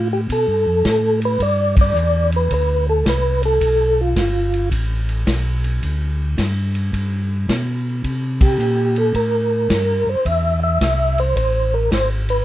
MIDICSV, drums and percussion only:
0, 0, Header, 1, 2, 480
1, 0, Start_track
1, 0, Tempo, 553506
1, 1211, Time_signature, 4, 2, 24, 8
1, 10795, End_track
2, 0, Start_track
2, 0, Title_t, "Drums"
2, 255, Note_on_c, 9, 36, 19
2, 259, Note_on_c, 9, 51, 59
2, 341, Note_off_c, 9, 36, 0
2, 345, Note_off_c, 9, 51, 0
2, 734, Note_on_c, 9, 36, 22
2, 735, Note_on_c, 9, 38, 65
2, 736, Note_on_c, 9, 44, 50
2, 736, Note_on_c, 9, 51, 62
2, 821, Note_off_c, 9, 36, 0
2, 822, Note_off_c, 9, 38, 0
2, 823, Note_off_c, 9, 44, 0
2, 823, Note_off_c, 9, 51, 0
2, 1055, Note_on_c, 9, 51, 41
2, 1141, Note_off_c, 9, 51, 0
2, 1213, Note_on_c, 9, 36, 17
2, 1215, Note_on_c, 9, 51, 53
2, 1300, Note_off_c, 9, 36, 0
2, 1302, Note_off_c, 9, 51, 0
2, 1533, Note_on_c, 9, 36, 76
2, 1535, Note_on_c, 9, 51, 66
2, 1620, Note_off_c, 9, 36, 0
2, 1622, Note_off_c, 9, 51, 0
2, 1698, Note_on_c, 9, 44, 50
2, 1785, Note_off_c, 9, 44, 0
2, 2014, Note_on_c, 9, 51, 40
2, 2101, Note_off_c, 9, 51, 0
2, 2172, Note_on_c, 9, 36, 22
2, 2173, Note_on_c, 9, 51, 54
2, 2259, Note_off_c, 9, 36, 0
2, 2260, Note_off_c, 9, 51, 0
2, 2652, Note_on_c, 9, 36, 25
2, 2653, Note_on_c, 9, 38, 65
2, 2654, Note_on_c, 9, 44, 56
2, 2654, Note_on_c, 9, 51, 63
2, 2738, Note_off_c, 9, 36, 0
2, 2740, Note_off_c, 9, 38, 0
2, 2741, Note_off_c, 9, 44, 0
2, 2741, Note_off_c, 9, 51, 0
2, 2973, Note_on_c, 9, 51, 44
2, 3060, Note_off_c, 9, 51, 0
2, 3130, Note_on_c, 9, 36, 22
2, 3132, Note_on_c, 9, 51, 58
2, 3217, Note_off_c, 9, 36, 0
2, 3219, Note_off_c, 9, 51, 0
2, 3609, Note_on_c, 9, 36, 23
2, 3609, Note_on_c, 9, 38, 58
2, 3610, Note_on_c, 9, 44, 56
2, 3610, Note_on_c, 9, 51, 66
2, 3695, Note_off_c, 9, 36, 0
2, 3696, Note_off_c, 9, 38, 0
2, 3697, Note_off_c, 9, 44, 0
2, 3697, Note_off_c, 9, 51, 0
2, 3932, Note_on_c, 9, 51, 39
2, 4019, Note_off_c, 9, 51, 0
2, 4089, Note_on_c, 9, 36, 25
2, 4090, Note_on_c, 9, 51, 62
2, 4175, Note_off_c, 9, 36, 0
2, 4177, Note_off_c, 9, 51, 0
2, 4411, Note_on_c, 9, 51, 44
2, 4498, Note_off_c, 9, 51, 0
2, 4569, Note_on_c, 9, 36, 23
2, 4569, Note_on_c, 9, 38, 65
2, 4570, Note_on_c, 9, 44, 56
2, 4570, Note_on_c, 9, 51, 70
2, 4656, Note_off_c, 9, 36, 0
2, 4656, Note_off_c, 9, 38, 0
2, 4657, Note_off_c, 9, 44, 0
2, 4657, Note_off_c, 9, 51, 0
2, 4891, Note_on_c, 9, 51, 42
2, 4978, Note_off_c, 9, 51, 0
2, 5050, Note_on_c, 9, 36, 19
2, 5053, Note_on_c, 9, 51, 52
2, 5137, Note_off_c, 9, 36, 0
2, 5140, Note_off_c, 9, 51, 0
2, 5531, Note_on_c, 9, 36, 23
2, 5532, Note_on_c, 9, 38, 60
2, 5532, Note_on_c, 9, 44, 47
2, 5532, Note_on_c, 9, 51, 64
2, 5617, Note_off_c, 9, 36, 0
2, 5618, Note_off_c, 9, 38, 0
2, 5619, Note_off_c, 9, 44, 0
2, 5619, Note_off_c, 9, 51, 0
2, 5852, Note_on_c, 9, 51, 41
2, 5939, Note_off_c, 9, 51, 0
2, 6012, Note_on_c, 9, 36, 19
2, 6016, Note_on_c, 9, 51, 56
2, 6099, Note_off_c, 9, 36, 0
2, 6102, Note_off_c, 9, 51, 0
2, 6493, Note_on_c, 9, 36, 17
2, 6496, Note_on_c, 9, 38, 63
2, 6497, Note_on_c, 9, 44, 53
2, 6497, Note_on_c, 9, 51, 69
2, 6579, Note_off_c, 9, 36, 0
2, 6583, Note_off_c, 9, 38, 0
2, 6584, Note_off_c, 9, 44, 0
2, 6584, Note_off_c, 9, 51, 0
2, 6972, Note_on_c, 9, 36, 21
2, 6975, Note_on_c, 9, 51, 54
2, 7059, Note_off_c, 9, 36, 0
2, 7061, Note_off_c, 9, 51, 0
2, 7292, Note_on_c, 9, 36, 75
2, 7293, Note_on_c, 9, 51, 72
2, 7379, Note_off_c, 9, 36, 0
2, 7380, Note_off_c, 9, 51, 0
2, 7452, Note_on_c, 9, 44, 59
2, 7539, Note_off_c, 9, 44, 0
2, 7770, Note_on_c, 9, 51, 42
2, 7857, Note_off_c, 9, 51, 0
2, 7930, Note_on_c, 9, 36, 17
2, 7931, Note_on_c, 9, 51, 55
2, 8017, Note_off_c, 9, 36, 0
2, 8017, Note_off_c, 9, 51, 0
2, 8411, Note_on_c, 9, 36, 21
2, 8411, Note_on_c, 9, 38, 65
2, 8412, Note_on_c, 9, 44, 53
2, 8412, Note_on_c, 9, 51, 65
2, 8498, Note_off_c, 9, 36, 0
2, 8498, Note_off_c, 9, 38, 0
2, 8499, Note_off_c, 9, 44, 0
2, 8499, Note_off_c, 9, 51, 0
2, 8891, Note_on_c, 9, 36, 21
2, 8894, Note_on_c, 9, 51, 51
2, 8978, Note_off_c, 9, 36, 0
2, 8981, Note_off_c, 9, 51, 0
2, 9371, Note_on_c, 9, 36, 21
2, 9375, Note_on_c, 9, 38, 58
2, 9376, Note_on_c, 9, 44, 45
2, 9376, Note_on_c, 9, 51, 65
2, 9458, Note_off_c, 9, 36, 0
2, 9462, Note_off_c, 9, 38, 0
2, 9463, Note_off_c, 9, 44, 0
2, 9463, Note_off_c, 9, 51, 0
2, 9696, Note_on_c, 9, 51, 42
2, 9782, Note_off_c, 9, 51, 0
2, 9853, Note_on_c, 9, 36, 20
2, 9858, Note_on_c, 9, 51, 56
2, 9939, Note_off_c, 9, 36, 0
2, 9944, Note_off_c, 9, 51, 0
2, 10333, Note_on_c, 9, 36, 20
2, 10335, Note_on_c, 9, 38, 63
2, 10335, Note_on_c, 9, 44, 49
2, 10335, Note_on_c, 9, 51, 69
2, 10419, Note_off_c, 9, 36, 0
2, 10421, Note_off_c, 9, 38, 0
2, 10422, Note_off_c, 9, 44, 0
2, 10422, Note_off_c, 9, 51, 0
2, 10654, Note_on_c, 9, 51, 46
2, 10741, Note_off_c, 9, 51, 0
2, 10795, End_track
0, 0, End_of_file